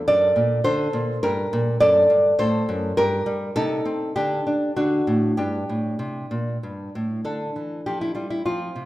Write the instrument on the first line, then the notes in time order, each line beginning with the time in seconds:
nylon-string guitar
0.08 F#2 A4 D5
0.36 A#2
0.64 D3 A4 C5
0.93 A#2
1.23 G2 G4 A#4
1.53 A#2
1.80 F#2 A4 D5
2.10 G2
2.39 A2 A4 C5
2.69 F#2
2.97 G2 G4 A#4
3.26 G3
3.56 C3 D#4 A4
3.85 C4
4.16 D3 D4 G4
4.47 D4
4.76 D3 D4 F#4
5.07 A2
5.37 G2 D4 G4
5.69 A2
5.99 C3
6.31 A#2
6.63 G2
6.95 A2
7.24 D3 D4 A4
7.56 E3
7.86 F3 G4
8.01 E4
8.15 G3 F4
8.30 E4
8.46 F3 C4 F4
8.76 C3